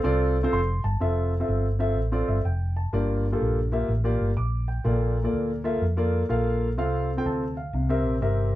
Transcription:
0.03 fingered electric bass C2, grand piano C4 F4 A4 D5
0.43 grand piano C4 F4 A4 C5
0.52 fingered electric bass F1, grand piano C6
0.84 fingered electric bass G1, grand piano A5
1.00 fingered electric bass F1, grand piano C4 F4 A4 E5
1.40 grand piano C4 F4 A4 E5
1.48 fingered electric bass G1
1.79 grand piano C4 F4 A4 E5
1.97 fingered electric bass A1
2.12 grand piano C4 F4 A4 D5
2.28 fingered electric bass G1, grand piano E5
2.45 fingered electric bass F1, grand piano G5
2.76 grand piano A5
2.93 fingered electric bass G1, grand piano G2 A#3 F4 G4 D5
3.32 grand piano A#3 F4 G4 A4
3.41 fingered electric bass A#1
3.72 grand piano A#3 F4 G4 E5
3.88 fingered electric bass A1
4.04 grand piano A#3 F4 G4 D5
4.20 fingered electric bass G1
4.37 fingered electric bass A#1, grand piano D6
4.68 grand piano G5
4.84 fingered electric bass A#1, grand piano A#2 A#3 F4 A4 D5
5.24 grand piano A#3 F4 A4 D5
5.33 fingered electric bass D2
5.64 grand piano A#3 F4 A4 E5
5.81 fingered electric bass F2
5.97 grand piano A#3 F4 A4 D5
6.29 fingered electric bass A#1, grand piano A#3 F4 A4 F5
6.78 fingered electric bass C2, grand piano C3 C4 F4 A4 F5
7.17 grand piano C4 F4 A4 G5
7.26 fingered electric bass D2, grand piano A5
7.57 grand piano F5
7.73 fingered electric bass C2, grand piano C3
7.89 grand piano C4 G4 A#4 E5
8.05 fingered electric bass A#1
8.21 fingered electric bass G1, grand piano C4 G4 A#4 E5

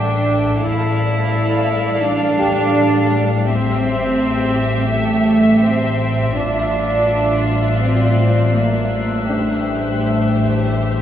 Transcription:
Already playing: synth drone A1, double bass section A1, cello section D4, violin section A4 E5 G5, grand piano D5 D6
0.60 synth drone A1, double bass section A1, cello section E4, violin section A4 D5 F5
2.04 cello section D4
2.38 grand piano G4 G5
3.47 cello section C4, violin section G4 E5
4.91 cello section A3
5.63 cello section C4
6.35 synth drone A1, double bass section A1, cello section D4, violin section F4 D5 E6 C7
7.09 violin section F#6
7.81 cello section C4
8.55 cello section A#3
9.27 cello section A3, grand piano D4 D5, violin section G4 C5 E5
10.41 grand piano E5
10.68 violin section G6

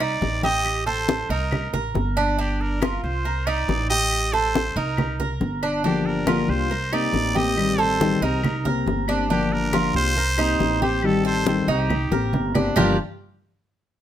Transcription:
Already playing: upright bass C2
0.00 cuban tres D#4, muted trumpet D5, high conga, claves
0.21 upright bass A1, high conga
0.43 cuban tres G4, muted trumpet D#5, high conga
0.65 high conga, claves
0.86 cuban tres A4, muted trumpet C5, high conga
1.09 high conga
1.29 upright bass C2, cuban tres D#4, muted trumpet A#4
1.52 high conga, low conga, claves
1.73 upright bass A1, cuban tres A#4, high conga, low conga
1.95 upright bass G1, high conga
2.17 cuban tres D4, high conga, claves
2.39 cuban tres D4, muted trumpet G4, high conga
2.61 muted trumpet A#4, high conga
2.82 cuban tres F4, high conga, claves
3.03 upright bass C2, muted trumpet C5, high conga
3.25 cuban tres A#4, high conga
3.46 cuban tres D#4, muted trumpet D5, high conga, claves
3.68 upright bass A1, high conga
3.90 cuban tres G4, muted trumpet D#5
4.11 high conga, claves
4.33 cuban tres A4, muted trumpet C5, high conga
4.55 high conga
4.76 upright bass C2, cuban tres D#4, muted trumpet A#4
4.98 high conga, low conga, claves
5.20 cuban tres A#4, high conga, low conga
5.40 upright bass G1, high conga
5.63 cuban tres D4, high conga, claves
5.84 steel-string acoustic guitar D3 F3 A#3 D4 G4, cuban tres D4, muted trumpet G4, high conga
6.06 muted trumpet A#4, high conga
6.27 steel-string acoustic guitar D3 F3 A#3 D4 G4, cuban tres F4, high conga, claves
6.48 upright bass C2, steel-string acoustic guitar A#3 D4 G4, muted trumpet C5, high conga
6.70 cuban tres A#4, muted steel-string acoustic guitar stroke, high conga
6.92 steel-string acoustic guitar A#3 C4 G4, cuban tres D#4, muted trumpet D5, high conga, claves
7.13 upright bass A1, high conga
7.35 steel-string acoustic guitar A#3 C4 G4, cuban tres G4, muted trumpet D#5, high conga
7.56 steel-string acoustic guitar D#3 G3 C4 G4, high conga, claves
7.78 cuban tres A4, muted trumpet C5, high conga
8.00 steel-string acoustic guitar D#3 G3 C4 G4, high conga
8.21 upright bass C2, steel-string acoustic guitar G3 C4 G4, cuban tres D#4, muted trumpet A#4
8.43 muted steel-string acoustic guitar stroke, high conga, low conga, claves
8.65 steel-string acoustic guitar A#3 C4 G4, cuban tres A#4, high conga, low conga
8.86 upright bass G1, high conga
9.08 steel-string acoustic guitar A#3 C4 G4, cuban tres D4, high conga, claves
9.30 steel-string acoustic guitar D3 F3 A#3 D4 G4, cuban tres D4, muted trumpet G4, high conga
9.52 muted trumpet A#4, high conga
9.73 steel-string acoustic guitar D3 F3 A#3 D4 G4, cuban tres F4, high conga, claves
9.94 upright bass C2, steel-string acoustic guitar A#3 D4 G4, muted trumpet C5, high conga
10.16 cuban tres A#4, muted steel-string acoustic guitar stroke, high conga
10.37 steel-string acoustic guitar A#3 C4 G4, cuban tres D#4, high conga, claves
10.59 upright bass A1, high conga
10.81 steel-string acoustic guitar A#3 C4 G4, cuban tres G4, muted trumpet C5, high conga
11.02 steel-string acoustic guitar D#3 G3 C4 G4, muted trumpet A4, high conga, claves
11.25 cuban tres A4, muted trumpet C5, high conga
11.46 steel-string acoustic guitar D#3 G3 C4 G4, muted trumpet C5, high conga
11.67 upright bass C2, steel-string acoustic guitar G3 C4 G4, cuban tres D#4, muted trumpet G4
11.90 muted steel-string acoustic guitar stroke, high conga, low conga, claves
12.11 upright bass A1, steel-string acoustic guitar A#3 C4 G4, cuban tres A#4, high conga
12.33 upright bass G1, low conga
12.55 steel-string acoustic guitar A#3 C4 G4, cuban tres D4, low conga, claves
12.76 upright bass G1, steel-string acoustic guitar G2 D3 F3 A#3 D4 G4, cuban tres G3 D4 F4, muted trumpet A#4, low conga, claves

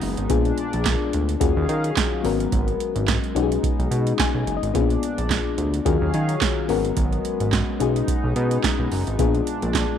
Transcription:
Already playing: analog synth pad G#3 B3 D#4, fm electric piano C#4 D#4 F#4 G#4
0.02 analog synth bass F#1, open hi-hat
0.17 analog synth bass G#1, closed hi-hat
0.29 analog synth bass A#1, analog synth pad A#2 D4, fm electric piano B3 D4 F4 G#4, kick, closed hi-hat
0.45 closed hi-hat
0.58 closed hi-hat
0.73 analog synth bass A#1, closed hi-hat
0.85 kick, snare, clap, closed hi-hat
1.13 analog synth bass D2, closed hi-hat
1.29 closed hi-hat
1.40 analog synth bass D#2, analog synth pad D#3 F#3 C#4 G#4 F5, fm electric piano C#4 F4 F#4 G#4, kick, closed hi-hat
1.57 analog synth bass D#2
1.69 analog synth bass D#3, closed hi-hat
1.84 closed hi-hat
1.96 kick, snare, clap, closed hi-hat
2.23 analog synth bass G#1, analog synth pad G#3 B3, fm electric piano B3 C#4 F#4 A#4, open hi-hat
2.40 closed hi-hat
2.52 analog synth bass G#1, kick, closed hi-hat
2.68 closed hi-hat
2.80 closed hi-hat
2.95 analog synth bass G#1, closed hi-hat
3.08 kick, snare, clap, closed hi-hat
3.24 closed hi-hat
3.35 analog synth bass B1, analog synth pad B3 D#4, fm electric piano C#4 D#4 F#4 G4, closed hi-hat
3.43 fm electric piano G#4
3.52 closed hi-hat
3.63 kick, closed hi-hat
3.79 analog synth bass B1, closed hi-hat
3.91 analog synth bass B2, closed hi-hat
4.07 closed hi-hat
4.19 fm electric piano G#5, kick, snare, clap, closed hi-hat
4.34 analog synth bass B1
4.47 analog synth bass F#1, closed hi-hat
4.57 fm electric piano D#5
4.62 analog synth bass G#1, closed hi-hat
4.74 analog synth bass A#1, analog synth pad A#2 D4, fm electric piano B3 C#4 F4 G#4, kick, closed hi-hat
4.81 fm electric piano D4
4.90 closed hi-hat
5.03 closed hi-hat
5.18 analog synth bass A#1, closed hi-hat
5.30 kick, snare, clap, closed hi-hat
5.58 analog synth bass D2, closed hi-hat
5.74 closed hi-hat
5.85 analog synth bass D#2, analog synth pad D#3 F#3 C#4 G#4 F5, fm electric piano C#4 F4 F#4 G#4, kick, closed hi-hat
6.01 analog synth bass D#2
6.14 analog synth bass D#3, closed hi-hat
6.29 closed hi-hat
6.41 kick, snare, clap, closed hi-hat
6.68 analog synth bass G#1, analog synth pad G#3 B3, fm electric piano B3 C#4 F#4 A#4, open hi-hat
6.85 closed hi-hat
6.97 analog synth bass G#1, kick, closed hi-hat
7.13 closed hi-hat
7.25 closed hi-hat
7.40 analog synth bass G#1, closed hi-hat
7.52 kick, snare, clap, closed hi-hat
7.80 analog synth bass B1, fm electric piano C#4 D#4 F#4 G#4, analog synth pad D#4, closed hi-hat
7.96 closed hi-hat
8.08 kick, closed hi-hat
8.24 analog synth bass B1
8.36 analog synth bass B2, closed hi-hat
8.51 closed hi-hat
8.63 kick, snare, clap, closed hi-hat
8.79 analog synth bass B1
8.92 analog synth bass F#1, open hi-hat
9.07 analog synth bass G#1, closed hi-hat
9.19 analog synth bass A#1, analog synth pad A#2 D4, fm electric piano B3 D4 F4 G#4, kick, closed hi-hat
9.35 closed hi-hat
9.47 closed hi-hat
9.62 analog synth bass A#1, closed hi-hat
9.74 kick, snare, clap, closed hi-hat

